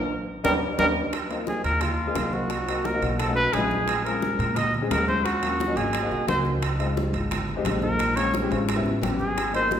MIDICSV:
0, 0, Header, 1, 6, 480
1, 0, Start_track
1, 0, Key_signature, -4, "major"
1, 0, Tempo, 343249
1, 1582, Time_signature, 4, 2, 24, 8
1, 13703, End_track
2, 0, Start_track
2, 0, Title_t, "Trumpet"
2, 0, Program_c, 0, 56
2, 621, Note_on_c, 0, 70, 93
2, 736, Note_off_c, 0, 70, 0
2, 1101, Note_on_c, 0, 70, 96
2, 1216, Note_off_c, 0, 70, 0
2, 2074, Note_on_c, 0, 68, 70
2, 2292, Note_off_c, 0, 68, 0
2, 2302, Note_on_c, 0, 70, 88
2, 2542, Note_on_c, 0, 65, 71
2, 2563, Note_off_c, 0, 70, 0
2, 3267, Note_on_c, 0, 66, 75
2, 3288, Note_off_c, 0, 65, 0
2, 3992, Note_on_c, 0, 70, 86
2, 4013, Note_off_c, 0, 66, 0
2, 4228, Note_off_c, 0, 70, 0
2, 4466, Note_on_c, 0, 69, 75
2, 4685, Note_off_c, 0, 69, 0
2, 4693, Note_on_c, 0, 71, 111
2, 4939, Note_on_c, 0, 68, 90
2, 4960, Note_off_c, 0, 71, 0
2, 5652, Note_off_c, 0, 68, 0
2, 5661, Note_on_c, 0, 70, 80
2, 6384, Note_on_c, 0, 75, 82
2, 6405, Note_off_c, 0, 70, 0
2, 6624, Note_off_c, 0, 75, 0
2, 6871, Note_on_c, 0, 70, 83
2, 7091, Note_off_c, 0, 70, 0
2, 7101, Note_on_c, 0, 72, 100
2, 7344, Note_on_c, 0, 66, 86
2, 7365, Note_off_c, 0, 72, 0
2, 8066, Note_on_c, 0, 68, 83
2, 8087, Note_off_c, 0, 66, 0
2, 8785, Note_off_c, 0, 68, 0
2, 8795, Note_on_c, 0, 72, 82
2, 8935, Note_off_c, 0, 72, 0
2, 10944, Note_on_c, 0, 70, 91
2, 11408, Note_on_c, 0, 73, 93
2, 11429, Note_off_c, 0, 70, 0
2, 11655, Note_off_c, 0, 73, 0
2, 12870, Note_on_c, 0, 68, 77
2, 13311, Note_off_c, 0, 68, 0
2, 13362, Note_on_c, 0, 72, 98
2, 13574, Note_off_c, 0, 72, 0
2, 13703, End_track
3, 0, Start_track
3, 0, Title_t, "Grand piano"
3, 0, Program_c, 1, 0
3, 608, Note_on_c, 1, 63, 84
3, 609, Note_on_c, 1, 61, 93
3, 612, Note_on_c, 1, 58, 86
3, 767, Note_off_c, 1, 63, 0
3, 768, Note_off_c, 1, 61, 0
3, 770, Note_off_c, 1, 58, 0
3, 1098, Note_on_c, 1, 61, 92
3, 1099, Note_on_c, 1, 63, 85
3, 1102, Note_on_c, 1, 58, 84
3, 1253, Note_off_c, 1, 61, 0
3, 1254, Note_off_c, 1, 63, 0
3, 1256, Note_off_c, 1, 58, 0
3, 1820, Note_on_c, 1, 58, 80
3, 1822, Note_on_c, 1, 60, 76
3, 1826, Note_on_c, 1, 65, 92
3, 1827, Note_on_c, 1, 63, 75
3, 2493, Note_off_c, 1, 58, 0
3, 2494, Note_off_c, 1, 60, 0
3, 2496, Note_off_c, 1, 65, 0
3, 2497, Note_off_c, 1, 63, 0
3, 2892, Note_on_c, 1, 58, 72
3, 2896, Note_on_c, 1, 63, 63
3, 2898, Note_on_c, 1, 60, 64
3, 2898, Note_on_c, 1, 68, 81
3, 3149, Note_off_c, 1, 58, 0
3, 3151, Note_off_c, 1, 63, 0
3, 3152, Note_off_c, 1, 60, 0
3, 3153, Note_off_c, 1, 68, 0
3, 3258, Note_on_c, 1, 58, 64
3, 3261, Note_on_c, 1, 63, 58
3, 3266, Note_on_c, 1, 60, 56
3, 3270, Note_on_c, 1, 65, 64
3, 3500, Note_off_c, 1, 58, 0
3, 3502, Note_off_c, 1, 63, 0
3, 3504, Note_off_c, 1, 60, 0
3, 3507, Note_off_c, 1, 65, 0
3, 3748, Note_on_c, 1, 58, 66
3, 3750, Note_on_c, 1, 60, 68
3, 3754, Note_on_c, 1, 63, 64
3, 3759, Note_on_c, 1, 66, 75
3, 3997, Note_off_c, 1, 58, 0
3, 3998, Note_off_c, 1, 60, 0
3, 4001, Note_off_c, 1, 63, 0
3, 4003, Note_off_c, 1, 66, 0
3, 4106, Note_on_c, 1, 60, 65
3, 4108, Note_on_c, 1, 58, 74
3, 4108, Note_on_c, 1, 63, 73
3, 4117, Note_on_c, 1, 66, 79
3, 4189, Note_off_c, 1, 60, 0
3, 4190, Note_off_c, 1, 58, 0
3, 4190, Note_off_c, 1, 63, 0
3, 4194, Note_off_c, 1, 66, 0
3, 4223, Note_on_c, 1, 58, 62
3, 4228, Note_on_c, 1, 60, 63
3, 4232, Note_on_c, 1, 63, 61
3, 4234, Note_on_c, 1, 66, 72
3, 4463, Note_off_c, 1, 58, 0
3, 4466, Note_off_c, 1, 60, 0
3, 4467, Note_off_c, 1, 63, 0
3, 4468, Note_off_c, 1, 66, 0
3, 4579, Note_on_c, 1, 57, 68
3, 4587, Note_on_c, 1, 61, 66
3, 4591, Note_on_c, 1, 63, 61
3, 4598, Note_on_c, 1, 66, 82
3, 4833, Note_off_c, 1, 57, 0
3, 4837, Note_off_c, 1, 61, 0
3, 4839, Note_off_c, 1, 63, 0
3, 4843, Note_off_c, 1, 66, 0
3, 4955, Note_on_c, 1, 57, 78
3, 4959, Note_on_c, 1, 61, 65
3, 4962, Note_on_c, 1, 63, 68
3, 4965, Note_on_c, 1, 65, 77
3, 5429, Note_off_c, 1, 57, 0
3, 5431, Note_off_c, 1, 61, 0
3, 5433, Note_off_c, 1, 63, 0
3, 5434, Note_off_c, 1, 65, 0
3, 5672, Note_on_c, 1, 56, 72
3, 5675, Note_on_c, 1, 60, 64
3, 5678, Note_on_c, 1, 61, 62
3, 5678, Note_on_c, 1, 65, 78
3, 6340, Note_off_c, 1, 56, 0
3, 6341, Note_off_c, 1, 60, 0
3, 6343, Note_off_c, 1, 61, 0
3, 6343, Note_off_c, 1, 65, 0
3, 6734, Note_on_c, 1, 56, 82
3, 6740, Note_on_c, 1, 60, 70
3, 6744, Note_on_c, 1, 68, 88
3, 6745, Note_on_c, 1, 61, 66
3, 6991, Note_off_c, 1, 56, 0
3, 6994, Note_off_c, 1, 60, 0
3, 6996, Note_off_c, 1, 61, 0
3, 6996, Note_off_c, 1, 68, 0
3, 7100, Note_on_c, 1, 56, 63
3, 7103, Note_on_c, 1, 60, 56
3, 7104, Note_on_c, 1, 61, 62
3, 7110, Note_on_c, 1, 65, 70
3, 7342, Note_off_c, 1, 56, 0
3, 7343, Note_off_c, 1, 60, 0
3, 7344, Note_off_c, 1, 61, 0
3, 7347, Note_off_c, 1, 65, 0
3, 7579, Note_on_c, 1, 54, 73
3, 7581, Note_on_c, 1, 58, 61
3, 7586, Note_on_c, 1, 61, 59
3, 7586, Note_on_c, 1, 65, 81
3, 7834, Note_off_c, 1, 54, 0
3, 7834, Note_off_c, 1, 58, 0
3, 7837, Note_off_c, 1, 61, 0
3, 7837, Note_off_c, 1, 65, 0
3, 7937, Note_on_c, 1, 54, 81
3, 7937, Note_on_c, 1, 58, 69
3, 7940, Note_on_c, 1, 63, 86
3, 7941, Note_on_c, 1, 61, 75
3, 8024, Note_off_c, 1, 58, 0
3, 8025, Note_off_c, 1, 54, 0
3, 8026, Note_off_c, 1, 61, 0
3, 8026, Note_off_c, 1, 63, 0
3, 8050, Note_on_c, 1, 54, 69
3, 8056, Note_on_c, 1, 58, 58
3, 8059, Note_on_c, 1, 63, 75
3, 8060, Note_on_c, 1, 61, 62
3, 8297, Note_off_c, 1, 54, 0
3, 8300, Note_off_c, 1, 58, 0
3, 8301, Note_off_c, 1, 63, 0
3, 8302, Note_off_c, 1, 61, 0
3, 8420, Note_on_c, 1, 58, 70
3, 8422, Note_on_c, 1, 60, 65
3, 8428, Note_on_c, 1, 63, 69
3, 8432, Note_on_c, 1, 66, 84
3, 8674, Note_off_c, 1, 58, 0
3, 8675, Note_off_c, 1, 60, 0
3, 8678, Note_off_c, 1, 63, 0
3, 8680, Note_off_c, 1, 66, 0
3, 8769, Note_on_c, 1, 58, 74
3, 8773, Note_on_c, 1, 60, 72
3, 8778, Note_on_c, 1, 66, 76
3, 8779, Note_on_c, 1, 63, 68
3, 9256, Note_off_c, 1, 58, 0
3, 9258, Note_off_c, 1, 60, 0
3, 9260, Note_off_c, 1, 66, 0
3, 9261, Note_off_c, 1, 63, 0
3, 9494, Note_on_c, 1, 56, 82
3, 9499, Note_on_c, 1, 60, 77
3, 9501, Note_on_c, 1, 63, 78
3, 9507, Note_on_c, 1, 65, 91
3, 10171, Note_off_c, 1, 56, 0
3, 10173, Note_off_c, 1, 60, 0
3, 10174, Note_off_c, 1, 63, 0
3, 10177, Note_off_c, 1, 65, 0
3, 10571, Note_on_c, 1, 56, 90
3, 10578, Note_on_c, 1, 60, 87
3, 10582, Note_on_c, 1, 63, 82
3, 10586, Note_on_c, 1, 67, 101
3, 10829, Note_off_c, 1, 56, 0
3, 10832, Note_off_c, 1, 60, 0
3, 10834, Note_off_c, 1, 63, 0
3, 10836, Note_off_c, 1, 67, 0
3, 10920, Note_on_c, 1, 56, 66
3, 10922, Note_on_c, 1, 60, 57
3, 10930, Note_on_c, 1, 63, 59
3, 10931, Note_on_c, 1, 65, 73
3, 11171, Note_off_c, 1, 56, 0
3, 11172, Note_off_c, 1, 60, 0
3, 11176, Note_off_c, 1, 63, 0
3, 11177, Note_off_c, 1, 65, 0
3, 11414, Note_on_c, 1, 56, 72
3, 11419, Note_on_c, 1, 60, 67
3, 11420, Note_on_c, 1, 61, 68
3, 11427, Note_on_c, 1, 65, 80
3, 11670, Note_off_c, 1, 56, 0
3, 11672, Note_off_c, 1, 60, 0
3, 11673, Note_off_c, 1, 61, 0
3, 11676, Note_off_c, 1, 65, 0
3, 11775, Note_on_c, 1, 60, 86
3, 11777, Note_on_c, 1, 56, 94
3, 11779, Note_on_c, 1, 61, 93
3, 11786, Note_on_c, 1, 67, 101
3, 11863, Note_off_c, 1, 56, 0
3, 11863, Note_off_c, 1, 60, 0
3, 11864, Note_off_c, 1, 61, 0
3, 11868, Note_off_c, 1, 67, 0
3, 11892, Note_on_c, 1, 56, 84
3, 11893, Note_on_c, 1, 60, 76
3, 11900, Note_on_c, 1, 65, 90
3, 11902, Note_on_c, 1, 61, 81
3, 12137, Note_off_c, 1, 56, 0
3, 12137, Note_off_c, 1, 60, 0
3, 12141, Note_off_c, 1, 61, 0
3, 12141, Note_off_c, 1, 65, 0
3, 12243, Note_on_c, 1, 55, 87
3, 12250, Note_on_c, 1, 59, 76
3, 12254, Note_on_c, 1, 64, 100
3, 12255, Note_on_c, 1, 61, 83
3, 12504, Note_off_c, 1, 55, 0
3, 12508, Note_off_c, 1, 59, 0
3, 12510, Note_off_c, 1, 61, 0
3, 12510, Note_off_c, 1, 64, 0
3, 12606, Note_on_c, 1, 55, 91
3, 12611, Note_on_c, 1, 59, 78
3, 12613, Note_on_c, 1, 61, 84
3, 12617, Note_on_c, 1, 67, 102
3, 13093, Note_off_c, 1, 55, 0
3, 13096, Note_off_c, 1, 59, 0
3, 13096, Note_off_c, 1, 61, 0
3, 13099, Note_off_c, 1, 67, 0
3, 13329, Note_on_c, 1, 53, 79
3, 13331, Note_on_c, 1, 58, 71
3, 13334, Note_on_c, 1, 63, 80
3, 13337, Note_on_c, 1, 60, 69
3, 13703, Note_off_c, 1, 53, 0
3, 13703, Note_off_c, 1, 58, 0
3, 13703, Note_off_c, 1, 60, 0
3, 13703, Note_off_c, 1, 63, 0
3, 13703, End_track
4, 0, Start_track
4, 0, Title_t, "Trombone"
4, 0, Program_c, 2, 57
4, 627, Note_on_c, 2, 55, 92
4, 741, Note_off_c, 2, 55, 0
4, 1098, Note_on_c, 2, 55, 86
4, 1215, Note_off_c, 2, 55, 0
4, 13703, End_track
5, 0, Start_track
5, 0, Title_t, "Upright bass"
5, 0, Program_c, 3, 32
5, 621, Note_on_c, 3, 39, 92
5, 800, Note_off_c, 3, 39, 0
5, 1098, Note_on_c, 3, 39, 85
5, 1279, Note_off_c, 3, 39, 0
5, 2298, Note_on_c, 3, 39, 87
5, 2970, Note_off_c, 3, 39, 0
5, 3020, Note_on_c, 3, 36, 82
5, 4142, Note_off_c, 3, 36, 0
5, 4222, Note_on_c, 3, 35, 92
5, 4892, Note_off_c, 3, 35, 0
5, 4938, Note_on_c, 3, 34, 88
5, 6061, Note_off_c, 3, 34, 0
5, 6139, Note_on_c, 3, 46, 91
5, 6811, Note_off_c, 3, 46, 0
5, 6862, Note_on_c, 3, 39, 84
5, 7983, Note_off_c, 3, 39, 0
5, 8054, Note_on_c, 3, 32, 88
5, 8505, Note_off_c, 3, 32, 0
5, 8544, Note_on_c, 3, 36, 74
5, 8767, Note_off_c, 3, 36, 0
5, 8776, Note_on_c, 3, 37, 84
5, 9899, Note_off_c, 3, 37, 0
5, 9975, Note_on_c, 3, 32, 91
5, 10648, Note_off_c, 3, 32, 0
5, 10691, Note_on_c, 3, 34, 83
5, 11816, Note_off_c, 3, 34, 0
5, 11896, Note_on_c, 3, 33, 93
5, 12345, Note_off_c, 3, 33, 0
5, 12370, Note_on_c, 3, 33, 73
5, 12598, Note_off_c, 3, 33, 0
5, 12607, Note_on_c, 3, 32, 85
5, 13703, Note_off_c, 3, 32, 0
5, 13703, End_track
6, 0, Start_track
6, 0, Title_t, "Drums"
6, 625, Note_on_c, 9, 61, 99
6, 626, Note_on_c, 9, 65, 93
6, 632, Note_on_c, 9, 63, 100
6, 765, Note_off_c, 9, 61, 0
6, 766, Note_off_c, 9, 65, 0
6, 772, Note_off_c, 9, 63, 0
6, 1097, Note_on_c, 9, 65, 88
6, 1099, Note_on_c, 9, 63, 86
6, 1102, Note_on_c, 9, 61, 91
6, 1237, Note_off_c, 9, 65, 0
6, 1239, Note_off_c, 9, 63, 0
6, 1242, Note_off_c, 9, 61, 0
6, 1579, Note_on_c, 9, 65, 87
6, 1583, Note_on_c, 9, 60, 64
6, 1588, Note_on_c, 9, 63, 31
6, 1719, Note_off_c, 9, 65, 0
6, 1723, Note_off_c, 9, 60, 0
6, 1728, Note_off_c, 9, 63, 0
6, 1826, Note_on_c, 9, 63, 31
6, 1826, Note_on_c, 9, 65, 61
6, 1966, Note_off_c, 9, 63, 0
6, 1966, Note_off_c, 9, 65, 0
6, 2055, Note_on_c, 9, 60, 51
6, 2069, Note_on_c, 9, 63, 79
6, 2195, Note_off_c, 9, 60, 0
6, 2209, Note_off_c, 9, 63, 0
6, 2300, Note_on_c, 9, 65, 61
6, 2315, Note_on_c, 9, 63, 31
6, 2440, Note_off_c, 9, 65, 0
6, 2455, Note_off_c, 9, 63, 0
6, 2530, Note_on_c, 9, 65, 83
6, 2536, Note_on_c, 9, 60, 65
6, 2551, Note_on_c, 9, 63, 32
6, 2551, Note_on_c, 9, 64, 82
6, 2670, Note_off_c, 9, 65, 0
6, 2675, Note_off_c, 9, 60, 0
6, 2691, Note_off_c, 9, 63, 0
6, 2691, Note_off_c, 9, 64, 0
6, 2777, Note_on_c, 9, 63, 32
6, 2916, Note_off_c, 9, 63, 0
6, 3013, Note_on_c, 9, 60, 63
6, 3013, Note_on_c, 9, 61, 79
6, 3021, Note_on_c, 9, 63, 76
6, 3022, Note_on_c, 9, 65, 76
6, 3153, Note_off_c, 9, 60, 0
6, 3153, Note_off_c, 9, 61, 0
6, 3161, Note_off_c, 9, 63, 0
6, 3162, Note_off_c, 9, 65, 0
6, 3258, Note_on_c, 9, 63, 75
6, 3398, Note_off_c, 9, 63, 0
6, 3495, Note_on_c, 9, 60, 67
6, 3505, Note_on_c, 9, 65, 63
6, 3514, Note_on_c, 9, 63, 32
6, 3635, Note_off_c, 9, 60, 0
6, 3644, Note_off_c, 9, 65, 0
6, 3654, Note_off_c, 9, 63, 0
6, 3755, Note_on_c, 9, 65, 86
6, 3756, Note_on_c, 9, 63, 30
6, 3895, Note_off_c, 9, 65, 0
6, 3896, Note_off_c, 9, 63, 0
6, 3985, Note_on_c, 9, 63, 84
6, 3989, Note_on_c, 9, 60, 55
6, 4125, Note_off_c, 9, 63, 0
6, 4129, Note_off_c, 9, 60, 0
6, 4220, Note_on_c, 9, 63, 33
6, 4230, Note_on_c, 9, 60, 30
6, 4231, Note_on_c, 9, 65, 66
6, 4360, Note_off_c, 9, 63, 0
6, 4370, Note_off_c, 9, 60, 0
6, 4370, Note_off_c, 9, 65, 0
6, 4467, Note_on_c, 9, 63, 32
6, 4469, Note_on_c, 9, 60, 66
6, 4474, Note_on_c, 9, 65, 85
6, 4607, Note_off_c, 9, 63, 0
6, 4609, Note_off_c, 9, 60, 0
6, 4614, Note_off_c, 9, 65, 0
6, 4708, Note_on_c, 9, 60, 30
6, 4720, Note_on_c, 9, 63, 35
6, 4848, Note_off_c, 9, 60, 0
6, 4859, Note_off_c, 9, 63, 0
6, 4943, Note_on_c, 9, 60, 69
6, 4943, Note_on_c, 9, 61, 80
6, 4950, Note_on_c, 9, 65, 64
6, 4951, Note_on_c, 9, 63, 77
6, 5083, Note_off_c, 9, 60, 0
6, 5083, Note_off_c, 9, 61, 0
6, 5090, Note_off_c, 9, 63, 0
6, 5090, Note_off_c, 9, 65, 0
6, 5189, Note_on_c, 9, 60, 32
6, 5196, Note_on_c, 9, 63, 74
6, 5329, Note_off_c, 9, 60, 0
6, 5335, Note_off_c, 9, 63, 0
6, 5421, Note_on_c, 9, 60, 64
6, 5438, Note_on_c, 9, 63, 32
6, 5439, Note_on_c, 9, 65, 92
6, 5561, Note_off_c, 9, 60, 0
6, 5578, Note_off_c, 9, 63, 0
6, 5578, Note_off_c, 9, 65, 0
6, 5670, Note_on_c, 9, 63, 29
6, 5685, Note_on_c, 9, 65, 66
6, 5810, Note_off_c, 9, 63, 0
6, 5824, Note_off_c, 9, 65, 0
6, 5906, Note_on_c, 9, 60, 51
6, 5909, Note_on_c, 9, 63, 88
6, 6046, Note_off_c, 9, 60, 0
6, 6049, Note_off_c, 9, 63, 0
6, 6145, Note_on_c, 9, 63, 35
6, 6153, Note_on_c, 9, 65, 66
6, 6285, Note_off_c, 9, 63, 0
6, 6293, Note_off_c, 9, 65, 0
6, 6382, Note_on_c, 9, 60, 65
6, 6388, Note_on_c, 9, 65, 87
6, 6391, Note_on_c, 9, 63, 35
6, 6391, Note_on_c, 9, 64, 84
6, 6522, Note_off_c, 9, 60, 0
6, 6528, Note_off_c, 9, 65, 0
6, 6531, Note_off_c, 9, 63, 0
6, 6531, Note_off_c, 9, 64, 0
6, 6633, Note_on_c, 9, 63, 35
6, 6633, Note_on_c, 9, 64, 68
6, 6773, Note_off_c, 9, 63, 0
6, 6773, Note_off_c, 9, 64, 0
6, 6869, Note_on_c, 9, 60, 70
6, 6869, Note_on_c, 9, 61, 81
6, 6870, Note_on_c, 9, 63, 75
6, 6872, Note_on_c, 9, 65, 88
6, 6872, Note_on_c, 9, 66, 63
6, 7009, Note_off_c, 9, 60, 0
6, 7009, Note_off_c, 9, 61, 0
6, 7010, Note_off_c, 9, 63, 0
6, 7012, Note_off_c, 9, 65, 0
6, 7012, Note_off_c, 9, 66, 0
6, 7112, Note_on_c, 9, 63, 83
6, 7252, Note_off_c, 9, 63, 0
6, 7350, Note_on_c, 9, 60, 65
6, 7350, Note_on_c, 9, 65, 63
6, 7355, Note_on_c, 9, 63, 33
6, 7490, Note_off_c, 9, 60, 0
6, 7490, Note_off_c, 9, 65, 0
6, 7495, Note_off_c, 9, 63, 0
6, 7591, Note_on_c, 9, 65, 92
6, 7597, Note_on_c, 9, 63, 34
6, 7730, Note_off_c, 9, 65, 0
6, 7737, Note_off_c, 9, 63, 0
6, 7835, Note_on_c, 9, 63, 94
6, 7844, Note_on_c, 9, 60, 56
6, 7975, Note_off_c, 9, 63, 0
6, 7984, Note_off_c, 9, 60, 0
6, 8069, Note_on_c, 9, 65, 70
6, 8073, Note_on_c, 9, 63, 32
6, 8082, Note_on_c, 9, 60, 31
6, 8209, Note_off_c, 9, 65, 0
6, 8212, Note_off_c, 9, 63, 0
6, 8222, Note_off_c, 9, 60, 0
6, 8294, Note_on_c, 9, 65, 86
6, 8312, Note_on_c, 9, 63, 33
6, 8316, Note_on_c, 9, 60, 68
6, 8434, Note_off_c, 9, 65, 0
6, 8452, Note_off_c, 9, 63, 0
6, 8456, Note_off_c, 9, 60, 0
6, 8552, Note_on_c, 9, 63, 33
6, 8554, Note_on_c, 9, 60, 30
6, 8692, Note_off_c, 9, 63, 0
6, 8693, Note_off_c, 9, 60, 0
6, 8787, Note_on_c, 9, 65, 63
6, 8789, Note_on_c, 9, 60, 65
6, 8789, Note_on_c, 9, 61, 85
6, 8794, Note_on_c, 9, 63, 76
6, 8927, Note_off_c, 9, 65, 0
6, 8929, Note_off_c, 9, 60, 0
6, 8929, Note_off_c, 9, 61, 0
6, 8933, Note_off_c, 9, 63, 0
6, 9021, Note_on_c, 9, 60, 32
6, 9041, Note_on_c, 9, 63, 76
6, 9161, Note_off_c, 9, 60, 0
6, 9180, Note_off_c, 9, 63, 0
6, 9264, Note_on_c, 9, 65, 87
6, 9267, Note_on_c, 9, 60, 69
6, 9404, Note_off_c, 9, 65, 0
6, 9407, Note_off_c, 9, 60, 0
6, 9510, Note_on_c, 9, 65, 65
6, 9649, Note_off_c, 9, 65, 0
6, 9749, Note_on_c, 9, 63, 87
6, 9752, Note_on_c, 9, 60, 54
6, 9889, Note_off_c, 9, 63, 0
6, 9891, Note_off_c, 9, 60, 0
6, 9984, Note_on_c, 9, 65, 65
6, 9991, Note_on_c, 9, 63, 31
6, 10124, Note_off_c, 9, 65, 0
6, 10131, Note_off_c, 9, 63, 0
6, 10226, Note_on_c, 9, 65, 92
6, 10232, Note_on_c, 9, 63, 37
6, 10232, Note_on_c, 9, 64, 82
6, 10234, Note_on_c, 9, 60, 70
6, 10365, Note_off_c, 9, 65, 0
6, 10372, Note_off_c, 9, 63, 0
6, 10372, Note_off_c, 9, 64, 0
6, 10374, Note_off_c, 9, 60, 0
6, 10471, Note_on_c, 9, 63, 35
6, 10471, Note_on_c, 9, 64, 70
6, 10611, Note_off_c, 9, 63, 0
6, 10611, Note_off_c, 9, 64, 0
6, 10698, Note_on_c, 9, 65, 88
6, 10708, Note_on_c, 9, 63, 76
6, 10712, Note_on_c, 9, 60, 64
6, 10712, Note_on_c, 9, 61, 80
6, 10838, Note_off_c, 9, 65, 0
6, 10848, Note_off_c, 9, 63, 0
6, 10852, Note_off_c, 9, 60, 0
6, 10852, Note_off_c, 9, 61, 0
6, 10938, Note_on_c, 9, 63, 84
6, 11078, Note_off_c, 9, 63, 0
6, 11179, Note_on_c, 9, 65, 66
6, 11188, Note_on_c, 9, 60, 69
6, 11188, Note_on_c, 9, 63, 32
6, 11319, Note_off_c, 9, 65, 0
6, 11328, Note_off_c, 9, 60, 0
6, 11328, Note_off_c, 9, 63, 0
6, 11427, Note_on_c, 9, 65, 91
6, 11429, Note_on_c, 9, 63, 33
6, 11567, Note_off_c, 9, 65, 0
6, 11569, Note_off_c, 9, 63, 0
6, 11658, Note_on_c, 9, 63, 94
6, 11669, Note_on_c, 9, 60, 59
6, 11798, Note_off_c, 9, 63, 0
6, 11809, Note_off_c, 9, 60, 0
6, 11910, Note_on_c, 9, 65, 63
6, 11912, Note_on_c, 9, 60, 31
6, 11912, Note_on_c, 9, 63, 32
6, 12050, Note_off_c, 9, 65, 0
6, 12052, Note_off_c, 9, 60, 0
6, 12052, Note_off_c, 9, 63, 0
6, 12138, Note_on_c, 9, 63, 35
6, 12147, Note_on_c, 9, 60, 73
6, 12161, Note_on_c, 9, 65, 94
6, 12278, Note_off_c, 9, 63, 0
6, 12287, Note_off_c, 9, 60, 0
6, 12300, Note_off_c, 9, 65, 0
6, 12375, Note_on_c, 9, 63, 34
6, 12388, Note_on_c, 9, 60, 33
6, 12515, Note_off_c, 9, 63, 0
6, 12528, Note_off_c, 9, 60, 0
6, 12621, Note_on_c, 9, 63, 77
6, 12632, Note_on_c, 9, 60, 71
6, 12632, Note_on_c, 9, 61, 83
6, 12635, Note_on_c, 9, 65, 60
6, 12761, Note_off_c, 9, 63, 0
6, 12772, Note_off_c, 9, 60, 0
6, 12772, Note_off_c, 9, 61, 0
6, 12775, Note_off_c, 9, 65, 0
6, 12860, Note_on_c, 9, 63, 79
6, 12879, Note_on_c, 9, 60, 34
6, 13000, Note_off_c, 9, 63, 0
6, 13019, Note_off_c, 9, 60, 0
6, 13104, Note_on_c, 9, 63, 35
6, 13112, Note_on_c, 9, 65, 88
6, 13116, Note_on_c, 9, 60, 73
6, 13244, Note_off_c, 9, 63, 0
6, 13252, Note_off_c, 9, 65, 0
6, 13256, Note_off_c, 9, 60, 0
6, 13348, Note_on_c, 9, 65, 67
6, 13349, Note_on_c, 9, 63, 29
6, 13488, Note_off_c, 9, 65, 0
6, 13489, Note_off_c, 9, 63, 0
6, 13581, Note_on_c, 9, 63, 84
6, 13591, Note_on_c, 9, 60, 56
6, 13703, Note_off_c, 9, 60, 0
6, 13703, Note_off_c, 9, 63, 0
6, 13703, End_track
0, 0, End_of_file